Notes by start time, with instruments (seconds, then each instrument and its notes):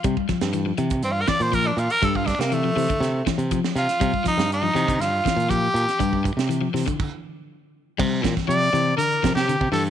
0.04 fingered electric bass C3, clean electric guitar G3, kick, closed hi-hat
0.17 kick
0.28 clean electric guitar F3, muted fingered electric bass stroke, kick, snare, closed hi-hat
0.41 fingered electric bass G2, snare, closed hi-hat
0.53 clean electric guitar E3, closed hi-hat
0.66 clean electric guitar F3
0.77 fingered electric bass C3, clean electric guitar E3, closed hi-hat
0.90 kick, closed hi-hat
1.02 fingered electric bass G2, tenor saxophone C4, closed hi-hat
1.12 tenor saxophone F4
1.21 tenor saxophone A#4
1.27 clean electric guitar E3, tenor saxophone D5, kick, snare, closed hi-hat
1.40 fingered electric bass A#2, tenor saxophone C5, closed hi-hat
1.52 clean electric guitar F3, tenor saxophone A#4, kick, closed hi-hat
1.67 tenor saxophone D4
1.77 fingered electric bass A#2, tenor saxophone F4, closed hi-hat
1.90 tenor saxophone A#4, closed hi-hat
2.02 fingered electric bass G2, clean electric guitar G3, tenor saxophone A4, kick, closed hi-hat
2.15 tenor saxophone F4, kick
2.26 tenor saxophone D4, muted clean electric guitar stroke, kick, snare, closed hi-hat
2.39 fingered electric bass C3, tenor saxophone A#3, snare, closed hi-hat
2.52 clean electric guitar E3, tenor saxophone A3, closed hi-hat
2.64 clean electric guitar F3
2.76 fingered electric bass C3, clean electric guitar E3, open hi-hat
2.89 clean electric guitar D3, kick, closed hi-hat
3.00 fingered electric bass C3, snare, closed hi-hat
3.26 clean electric guitar E3, kick, snare, closed hi-hat
3.38 fingered electric bass C3, closed hi-hat
3.51 clean electric guitar F3, kick, closed hi-hat
3.64 snare
3.75 fingered electric bass C3, tenor saxophone F4, snare, closed hi-hat
3.89 snare, closed hi-hat
4.00 fingered electric bass C3, clean electric guitar G3, kick, closed hi-hat
4.14 kick
4.24 clean electric guitar F3, tenor saxophone D#4, muted fingered electric bass stroke, kick, snare, closed hi-hat
4.38 fingered electric bass G2, snare, closed hi-hat
4.52 tenor saxophone D#4, closed hi-hat
4.63 clean electric guitar F3
4.74 fingered electric bass C3, clean electric guitar E3, closed hi-hat
4.88 clean electric guitar D3, kick, closed hi-hat
4.99 fingered electric bass G2, tenor saxophone F4, snare, closed hi-hat
5.25 clean electric guitar E3, kick, snare, closed hi-hat
5.37 fingered electric bass A#2, closed hi-hat
5.49 clean electric guitar F3, tenor saxophone G4, kick, closed hi-hat
5.74 fingered electric bass A#2, closed hi-hat
5.88 snare, closed hi-hat
5.99 fingered electric bass G2, clean electric guitar G3, kick, closed hi-hat
6.13 kick
6.24 muted clean electric guitar stroke, kick, closed hi-hat
6.37 fingered electric bass C3, snare, closed hi-hat
6.49 clean electric guitar E3, closed hi-hat
6.61 clean electric guitar F3
6.74 fingered electric bass C3, clean electric guitar E3, snare, open hi-hat
6.86 clean electric guitar D3, kick, closed hi-hat
7.00 kick, crash
7.98 fingered electric bass C3, clean electric guitar G3, kick, crash
8.23 fingered electric bass A#2, clean electric guitar E3, kick, snare, closed hi-hat
8.37 kick, snare, closed hi-hat
8.48 fingered electric bass C3, clean electric guitar F3, trumpet D5, closed hi-hat
8.63 closed hi-hat
8.73 fingered electric bass C3, clean electric guitar E3, closed hi-hat
8.97 clean electric guitar D3, trumpet A#4, closed hi-hat
9.12 closed hi-hat
9.23 fingered electric bass C3, clean electric guitar F3, kick, snare, closed hi-hat
9.35 fingered electric bass C3, trumpet G4, snare, closed hi-hat
9.49 clean electric guitar D3, closed hi-hat
9.61 fingered electric bass C3, kick
9.72 fingered electric bass G2, clean electric guitar E3, trumpet A4, open hi-hat
9.87 closed hi-hat